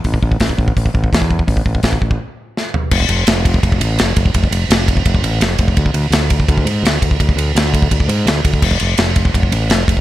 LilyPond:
<<
  \new Staff \with { instrumentName = "Fingered electric bass" } { \clef bass \time 4/4 \key f \lydian \tempo 4 = 168 a,,8 a,,8 a,,8 a,,8 a,,8 a,,8 e,4 | a,,8 a,,8 a,,8 a,,8 r2 | f,,8 f,,8 f,,4 f,,8 a,,8 f,,8 f,,8 | f,,8 f,,8 f,,4 f,,8 a,,8 f,,8 f,,8 |
d,8 d,8 d,4 d,8 gis,8 d,8 d,8 | d,8 d,8 d,4 d,8 gis,8 d,8 d,8 | f,,8 f,,8 f,,4 f,,8 a,,8 f,,8 f,,8 | }
  \new DrumStaff \with { instrumentName = "Drums" } \drummode { \time 4/4 <hho bd>16 bd16 bd16 bd16 <hho bd sn>16 bd16 bd16 bd16 <hho bd>16 bd16 bd16 bd16 <hho bd sn>16 bd16 bd16 bd16 | <hho bd>16 bd16 bd16 bd16 <hho bd sn>16 bd16 bd16 bd16 r4 sn8 tomfh8 | <cymc bd>16 bd16 cymr8 <cymr sn>8 <bd cymr>16 bd16 <bd cymr>16 bd16 cymr8 <cymr sn>8 <bd cymr>16 bd16 | <bd cymr>16 bd16 cymr8 <cymr sn>8 <bd cymr>16 bd16 <bd cymr>16 bd16 cymr8 <cymr sn>8 <bd cymr>16 bd16 |
<bd cymr>16 bd16 cymr8 <cymr sn>8 <bd cymr>16 bd16 <bd cymr>16 bd16 cymr8 <cymr sn>8 <bd cymr>16 bd16 | <bd cymr>16 bd16 cymr8 <cymr sn>8 <bd cymr>16 bd16 <bd cymr>16 bd16 cymr8 <cymr sn>8 <bd cymr>16 bd16 | <cymc bd>16 bd16 cymr8 <cymr sn>8 <bd cymr>16 bd16 <bd cymr>16 bd16 cymr8 <cymr sn>8 <bd cymr>16 bd16 | }
>>